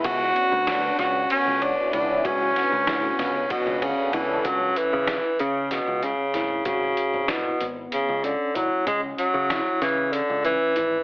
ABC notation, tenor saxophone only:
X:1
M:7/8
L:1/8
Q:1/4=95
K:C#phr
V:1 name="Tenor saxophone" clef=bass
F3 F C D D | C4 B,, C, E, | F, E,2 C, B,, C,2 | C,2 B,, z C, D, F, |
G, F,2 E, D, E,2 |]